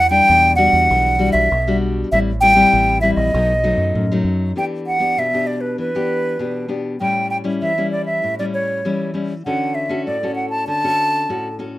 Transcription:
Already playing: E2 E3
0.10 G3 D4 G5
0.29 E2 B2
0.56 G3 D4 F#4 F#5
0.73 E2
0.90 B1 E3
1.19 G3 D4 F#4
1.32 B1 E5
1.51 B1 B2
1.68 G3 D4 F#4
2.12 A1 A2 G3 C4 E4 E5
2.41 G3 C4 E4 G5
2.55 G3 C4 E4
2.73 A1 E3
3.01 G3 C4 E4 E5
3.15 A#1 D#5
3.34 B1 B2 F#3 A3 D#4
3.64 F#3 A3 D#4
3.77 F#2
3.95 F#2 A2
4.12 F#3 A3 D#4
4.24 F#2
4.56 E3 B3 D4 G4 G5
4.87 F#5
5.00 B3 D4 G4
5.17 B2 E5
5.33 B3 D4 G4
5.47 D5
5.61 B4
5.78 E3 B4
5.95 B3 D4 G4
6.39 B2 B3 D4 G4
6.68 B3 D4 G4
7.00 A2 G3 C#4 E4 G5
7.30 G5
7.44 G3 C#4 E4
7.62 E3 E5
7.78 G3 C#4 E4
7.92 D5
8.05 E5
8.24 A2
8.39 G3 C#4 E4 D5
8.54 C#5
8.85 E3 G3 C#4 E4
9.14 G3 C#4 E4
9.46 D3 C#4 F#4 A4 F#5
9.75 E5
9.89 C#4 F#4 A4
10.06 A2 D5
10.23 C#4 F#4 A4
10.35 F#5
10.50 A5
10.67 D3 A5
10.84 C#4 F#4 A4
11.29 A2 C#4 F#4 A4
11.59 C#4 F#4 A4

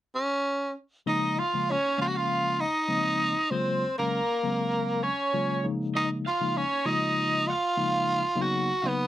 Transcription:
0.15 C#4
1.06 C#3 F3 G#3 A#3 D#4 D#5
1.39 F4 F5
1.54 C#3 F3 G#3 A#3 F4
1.70 C#4 C#5
1.85 A#3
1.98 C#3 F3 G#3 A#3 C#4 F4 F5
2.06 F#4 F#5
2.16 F4 F5
2.61 D#4 D#5
2.88 C#3 F3 G#3 A#3 C4
3.51 C#3 F#3 G#3 A#3 C4 F4 C5
3.98 C#3 F#3 G#3 A#3 C#4 A#4
4.31 A#3 C#4
4.43 C#3 F#3 G#3 A#3 C4
5.04 C#4 C#5
5.34 C#3 F#3 G#3 A#3 F4
5.63 C#3 F3 G#3 A#3 D#4
5.95 D#4 D#5
6.26 F4 F5
6.41 C#3 F3 G#3 A#3 D#4
6.57 C#4 C#5
6.72 A#3 D#4
6.85 C#3 F3 G#3 A#3 D#4 F4 D#5
7.48 F4 F5
7.77 C#3 F3 G#3 A#3 D#4
8.35 C#3 F#3 A#3 B3 D#4
8.41 F#4 F#5
8.83 C#3 F#3 A#3 B3 D#4
8.88 B3 B4

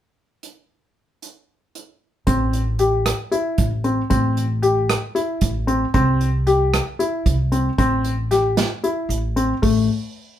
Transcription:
0.43 closed hi-hat
1.22 closed hi-hat
1.75 closed hi-hat
2.27 A1 C4, kick, closed hi-hat
2.53 closed hi-hat
2.79 G4, closed hi-hat
3.06 cross-stick, closed hi-hat
3.31 E4, closed hi-hat
3.58 A1, kick, closed hi-hat
3.84 C4, closed hi-hat
4.10 A1 C4, kick, closed hi-hat
4.37 closed hi-hat
4.62 G4, closed hi-hat
4.90 cross-stick, closed hi-hat
5.15 E4, closed hi-hat
5.41 A1, kick, closed hi-hat
5.67 C4, closed hi-hat
5.94 C2 C4, kick, closed hi-hat
6.21 closed hi-hat
6.47 G4, closed hi-hat
6.74 cross-stick, closed hi-hat
6.99 E4, closed hi-hat
7.26 C2, kick, closed hi-hat
7.52 C4, closed hi-hat
7.78 A1 C4, kick, closed hi-hat
8.04 closed hi-hat
8.31 G4, snare, closed hi-hat
8.57 snare, closed hi-hat
8.84 E4, closed hi-hat
9.09 A1, closed hi-hat
9.36 C4, closed hi-hat
9.62 A1 A3, kick, open hi-hat

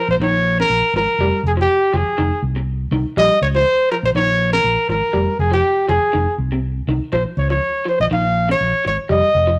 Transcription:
Already playing: F3
0.09 A#1 C5
0.20 A#1 D#3 C#5
0.60 C#3 A#4
0.70 A#1
0.94 G#1 F3 A#4
1.19 F1 G3
1.43 F1 G#4
1.57 F3
1.61 G4
1.93 F1 F3 G#4
2.06 muted fingered electric bass stroke
2.18 F1 D#3
2.42 C2
2.56 muted clean electric guitar stroke
2.92 C2 D#3
3.17 A#1 G3 D#5
3.42 C#2 C#5
3.55 F3 C5
3.92 F3 A#4
4.03 A#1 C5
4.15 A#1 D#3 C#5
4.53 C#3 A#4
4.64 A#1
4.89 G#1 F3 A#4
5.13 F1 G3
5.39 F1 G#4
5.51 F3 G4
5.88 F1 F3 G#4
6.13 F1 D#3
6.38 C2
6.52 C3
6.88 C2 D#3
7.13 A#1 F3 C5
7.37 C#2 C#5
7.50 F3 C#5
7.85 F3 C5
8.00 A#1 D#5
8.11 A#1 D#3 F5
8.49 C#3 C#5
8.61 A#1
8.85 G#1 C#5, muted clean electric guitar stroke
9.09 F1 G3 D#5
9.35 F1
9.47 F3

